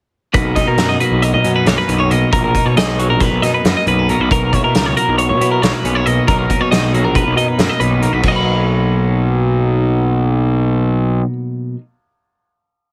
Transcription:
0.34 picked electric bass B1, clean electric guitar B2 A#3 B4, kick, closed hi-hat
0.56 clean electric guitar D#4 D#5, kick, snare, closed hi-hat
0.67 picked electric bass B2, clean electric guitar A#4
0.78 picked electric bass F#2, clean electric guitar F#4, snare, closed hi-hat
0.89 clean electric guitar G#4 D#5
1.00 clean electric guitar F#3 A#3 B4, closed hi-hat
1.11 picked electric bass B1
1.22 clean electric guitar A#4 D#5, closed hi-hat
1.33 picked electric bass B2, clean electric guitar D#5
1.44 clean electric guitar F#2 C#4, picked electric bass B2, closed hi-hat
1.56 clean electric guitar D#4 B4
1.66 picked electric bass B1, clean electric guitar A#3 C#5, snare, closed hi-hat
1.78 clean electric guitar B4
1.88 picked electric bass B1, clean electric guitar C#4, closed hi-hat
1.98 clean electric guitar D#4 C#5
2.10 clean electric guitar B2 A#3 D#5, closed hi-hat
2.31 picked electric bass A#1, clean electric guitar B2 A#3 A#4, kick, closed hi-hat
2.44 clean electric guitar A#4
2.55 clean electric guitar D#4, kick, closed hi-hat
2.65 picked electric bass B2, clean electric guitar C#5
2.76 picked electric bass B1, clean electric guitar G#4 D#5, snare, closed hi-hat
2.99 clean electric guitar F#3 A#3 C#5, closed hi-hat
3.09 picked electric bass A#1, clean electric guitar A#4
3.20 clean electric guitar A#4 B4, kick, snare, closed hi-hat
3.32 picked electric bass B1
3.42 clean electric guitar F#2 D#4 D#5, picked electric bass B2, snare, closed hi-hat
3.54 clean electric guitar B4
3.64 picked electric bass F#2, clean electric guitar A#3, snare, closed hi-hat
3.77 clean electric guitar D#5
3.87 picked electric bass B1, clean electric guitar C#4 B4, closed hi-hat
3.99 clean electric guitar D#4
4.09 clean electric guitar B2 A#3 A#4, closed hi-hat
4.20 picked electric bass B1, clean electric guitar B4
4.31 picked electric bass B1, clean electric guitar B2 A#3 A#4, kick, closed hi-hat
4.53 clean electric guitar E4 C#5, kick, closed hi-hat
4.64 picked electric bass B2, clean electric guitar A#4
4.75 picked electric bass C#2, clean electric guitar A#4, snare, closed hi-hat
4.86 clean electric guitar C#5
4.96 clean electric guitar F#3 A#3 A#4, closed hi-hat
5.08 picked electric bass B1
5.18 clean electric guitar C#5, closed hi-hat
5.29 picked electric bass B2, clean electric guitar C#5
5.41 clean electric guitar B2 E4, picked electric bass B2, closed hi-hat
5.51 clean electric guitar A#4
5.62 picked electric bass B1, clean electric guitar A#3 C#5, snare, closed hi-hat
5.73 clean electric guitar B4
5.84 picked electric bass B1, clean electric guitar C#4, closed hi-hat
5.95 clean electric guitar E4 C#5
6.06 clean electric guitar B2 A#3 D#5, closed hi-hat
6.28 picked electric bass B1, clean electric guitar B2 F#3 A#3 D#4 A#4, kick, closed hi-hat
6.39 clean electric guitar A#4
6.50 clean electric guitar C#4, kick, closed hi-hat
6.61 picked electric bass B2, clean electric guitar D#4 C#5
6.72 picked electric bass B1, clean electric guitar F#4 D#5, snare, closed hi-hat
6.84 clean electric guitar G#4
6.93 clean electric guitar F#3 A#3 C#5, closed hi-hat
7.04 picked electric bass A#1, clean electric guitar A#4
7.15 clean electric guitar A#4 B4, kick, closed hi-hat
7.27 picked electric bass B1
7.36 clean electric guitar F#2 D#4 D#5, picked electric bass B2, closed hi-hat
7.48 clean electric guitar B4
7.58 picked electric bass F#2, clean electric guitar A#3, snare, closed hi-hat
7.69 clean electric guitar D#5
7.80 picked electric bass B1, clean electric guitar D#4 B4, closed hi-hat
8.02 clean electric guitar B2 A#3 A#4, closed hi-hat
8.13 picked electric bass B1, clean electric guitar B4
8.23 picked electric bass B1, clean electric guitar B2 F#3, kick, crash
8.28 clean electric guitar A#3 D#4 D#5 F#5
8.36 clean electric guitar B5

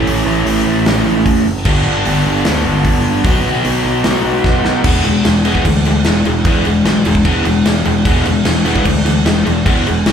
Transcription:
Already playing: overdriven electric guitar A2 E3 A3 C#4 E4
0.06 picked electric bass A1, open hi-hat
0.25 picked electric bass A1
0.45 picked electric bass A1, open hi-hat
0.66 picked electric bass A1
0.85 picked electric bass A1, snare, open hi-hat
1.06 picked electric bass A1
1.26 picked electric bass A1, kick, open hi-hat
1.46 picked electric bass F#1
1.65 picked electric bass G1, overdriven electric guitar G2 D3 G3 B3 D4, kick, crash
1.86 picked electric bass G1
2.05 picked electric bass G1, open hi-hat
2.25 picked electric bass G1
2.45 picked electric bass D2, snare, open hi-hat
2.65 picked electric bass G1
2.84 picked electric bass G1, kick, open hi-hat
3.24 picked electric bass B1, overdriven electric guitar B2 F#3 B3 D#4, kick, open hi-hat
3.45 picked electric bass B1
3.65 picked electric bass B1, open hi-hat
3.85 picked electric bass B1
4.04 picked electric bass B1, snare, open hi-hat
4.24 picked electric bass B1
4.44 picked electric bass B1, kick, snare
4.64 picked electric bass B1, snare
4.84 picked electric bass E1, overdriven electric guitar E3 G#3 B3, kick, crash
5.05 picked electric bass E1, overdriven electric guitar E3 G#3, crash
5.24 picked electric bass E1, overdriven electric guitar E3 G#3, snare, crash
5.45 overdriven electric guitar E3 G#3 B3, crash
5.55 kick
5.64 picked electric bass D2, overdriven electric guitar E3 G#3, kick, crash
5.85 overdriven electric guitar E3 G#3, crash
6.04 picked electric bass E1, overdriven electric guitar E3 G#3, snare, crash
6.25 picked electric bass E1, overdriven electric guitar E3 G#3, crash
6.45 picked electric bass E2, overdriven electric guitar E3 G#3 B3, kick, crash
6.65 picked electric bass E1, overdriven electric guitar E3 G#3, crash
6.85 picked electric bass B1, overdriven electric guitar E3 G#3, snare, crash
7.04 picked electric bass E1, overdriven electric guitar E3 G#3, crash
7.15 kick
7.25 picked electric bass E1, overdriven electric guitar E3 G#3 B3, kick, crash
7.45 picked electric bass E1, overdriven electric guitar E3 G#3, crash
7.65 picked electric bass E1, overdriven electric guitar E3 G#3, snare, crash
7.84 picked electric bass E1, overdriven electric guitar E3 G#3, crash
8.05 picked electric bass E1, overdriven electric guitar E3 G#3 B3, kick, crash
8.24 picked electric bass E1, overdriven electric guitar E3 G#3, crash
8.44 picked electric bass E1, overdriven electric guitar E3 G#3, snare, crash
8.65 overdriven electric guitar E3 G#3 B3, crash
8.76 kick
8.85 picked electric bass D2, overdriven electric guitar E3 G#3, kick, crash
9.05 overdriven electric guitar E3 G#3, crash
9.25 picked electric bass E1, overdriven electric guitar E3 G#3, snare, crash
9.45 picked electric bass E1, overdriven electric guitar E3 G#3, crash
9.66 picked electric bass E2, overdriven electric guitar E3 G#3 B3, kick, crash
9.86 picked electric bass E1, overdriven electric guitar E3 G#3, crash
10.06 picked electric bass B1, overdriven electric guitar E3 G#3, snare, crash

